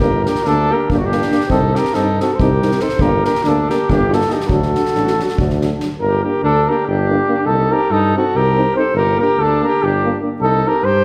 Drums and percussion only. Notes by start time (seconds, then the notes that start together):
0.00 kick
0.25 snare
0.35 snare
0.45 snare
0.90 kick
1.12 snare
1.22 snare
1.32 snare
1.40 snare
1.50 kick
1.75 snare
1.85 snare
1.94 snare
2.20 snare
2.40 kick
2.62 snare
2.71 snare
2.79 snare
2.89 snare
2.99 kick
3.24 snare
3.35 snare
3.44 snare
3.70 snare
3.90 kick
4.12 snare
4.21 snare
4.30 snare
4.40 snare
4.49 kick
4.62 snare
4.75 snare
4.85 snare
4.95 snare
5.07 snare
5.19 snare
5.28 snare
5.38 kick
5.50 snare
5.61 snare
5.80 snare